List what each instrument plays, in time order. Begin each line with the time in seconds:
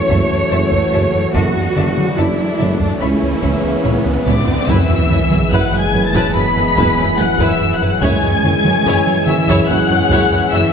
Already playing: trombone section E3 A3, analog synth pad F#3 E4 A4 C#5, french horn section C#4 F#4, cello section C#5, riser
0.09 tuba F#1, double bass section F#2, analog synth bass F#2, viola section A3, violin section C#5 E5 A5, taiko
0.32 analog synth bass F#2
0.51 tuba F#1, double bass section F#2, analog synth bass F#2, violin section C#5 E5 A5
0.72 analog synth bass F#2, taiko
0.92 tuba F#1, double bass section F#2, analog synth bass F#2, violin section C#5 E5 A5
1.15 analog synth bass F#2
1.34 tuba F#1, double bass section F#2, analog synth bass F#2, viola section B3, cello section F#4, violin section D5 E5 A5, analog synth pad D5, french horn section D5, taiko
1.56 analog synth bass F#2
1.76 tuba F#1, double bass section F#2, analog synth bass F#2, viola section C#3, violin section D5 E5 A5, taiko mid
1.97 analog synth bass F#3, taiko mid
2.17 tuba F#1, double bass section F#2, analog synth bass F#2, viola section D4, cello section E4, violin section D5 E5 A5
2.40 analog synth bass F#3
2.59 tuba F#1, double bass section F#2, analog synth bass F#3, violin section D5 E5 A5, taiko mid
2.81 analog synth bass F#2, cello section D4, taiko
3.00 double bass section C#2, tuba C#2, analog synth bass C#2, trombone section E3 B3, analog synth pad G#3 E4 B4 E5, french horn section C#4 G#4, cello section C#4, viola section E4, violin section C#5 E5 B5
3.23 analog synth bass C#2
3.42 double bass section C#2, analog synth bass C#2, tuba C#2, violin section C#5 E5 B5, taiko
3.64 analog synth bass C#2
3.84 double bass section C#2, analog synth bass C#2, tuba C#2, violin section C#5 E5 B5, taiko low-mid
4.06 analog synth bass C#2, taiko high
4.26 double bass section C#2, analog synth bass C#2, tuba C#2, cello section D3, violin section C#5 D5 E5 B5 D6, taiko low-mid
4.47 analog synth bass C#2, taiko low
4.68 tuba F#1, double bass section F#2, analog synth bass F#2, cello section E3, trombone section E3 G#3, analog synth pad G#3 E4 G#4 B4, french horn section B3 G#4, viola section E4 B4, violin section E5 E6, taiko, sub drop
4.89 double bass section F#2, analog synth bass F#2, viola section E4 B4
5.10 tuba F#1, double bass section F#2, analog synth bass F#2, viola section E4 B4, taiko mid
5.30 double bass section F#2, analog synth bass F#3, viola section E4 B4, taiko mid
5.51 tuba F#1, double bass section F#2, analog synth bass F#2, cello section F#3, viola section E4 B4, violin section F#5 F#6
5.72 double bass section F#2, analog synth bass F#3, viola section E4 B4
5.79 cello section G#3, violin section G#5 G#6
5.93 tuba F#1, double bass section F#2, analog synth bass F#3, viola section E4 B4, taiko mid
6.07 cello section A3, violin section A5 A6
6.14 double bass section F#2, analog synth bass F#2, viola section E4 B4, taiko
6.34 tuba F#1, double bass section F#2, analog synth bass F#2, cello section B3, viola section E4 B4, violin section B5 B6
6.56 double bass section F#2, analog synth bass F#2, viola section E4 B4
6.76 tuba F#1, double bass section F#2, analog synth bass F#2, viola section E4 B4, taiko
6.97 double bass section F#2, analog synth bass F#2, viola section E4 B4
7.18 tuba F#1, double bass section F#2, analog synth bass F#2, cello section F#3, viola section E4 B4, violin section F#5 F#6
7.39 double bass section F#2, analog synth bass F#2, viola section E4 B4, taiko
7.46 cello section E3, violin section E5 E6
7.61 analog synth bass F#2
7.74 cello section F#3, violin section F#5 F#6
7.81 double bass section F#2, analog synth bass F#2, viola section E4 B4
8.01 tuba F#1, double bass section F#2, analog synth bass F#2, trombone section E3 G#3, analog synth pad G#3 E4 G#4 C#5, cello section G#3, french horn section C#4 G#4, viola section E4 C#5, violin section G#5 G#6, taiko
8.22 double bass section F#2, analog synth bass F#2, viola section E4 C#5
8.43 tuba F#1, analog synth bass F#2, double bass section F#2, viola section E4 C#5, taiko mid
8.64 double bass section F#2, analog synth bass F#3, viola section E4 C#5, taiko mid
8.85 tuba F#1, double bass section F#2, analog synth bass F#2, viola section E4 C#5
9.06 double bass section F#2, analog synth bass F#3, viola section E4 C#5
9.26 tuba F#1, double bass section F#2, cello section E3, analog synth bass F#3, viola section E4 C#5, violin section E5 E6, taiko mid
9.47 double bass section F#2, analog synth bass F#2, viola section E4 C#5, taiko
9.68 tuba F#1, double bass section F#2, analog synth bass F#2, cello section F#3, viola section E4 C#5, violin section F#5 F#6
9.90 double bass section F#2, analog synth bass F#2, viola section E4 C#5
10.10 tuba F#1, analog synth bass F#2, double bass section F#2, viola section E4 C#5, taiko
10.32 double bass section F#2, analog synth bass F#2, viola section E4 C#5
10.52 tuba F#1, double bass section F#2, analog synth bass F#2, cello section E3, viola section E4 C#5, violin section E5 E6